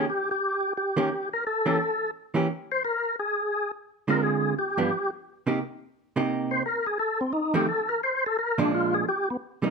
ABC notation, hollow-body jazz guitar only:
X:1
M:4/4
L:1/8
Q:"Swing" 1/4=173
K:Bbmix
V:1 name="Hollow-body jazz guitar"
z4 z [E,B,_DG] z2 | z [=E,B,^CG] z3 [E,B,CG] z2 | z6 z [D,A,CF]- | [D,A,CF]2 z [G,,F,_CD] z3 [=C,B,EG] |
z3 [C,B,EG]3 z2 | z3 [F,,E,=A,C] z4 | z [B,,F,A,D]3 z3 [C,G,B,E] |]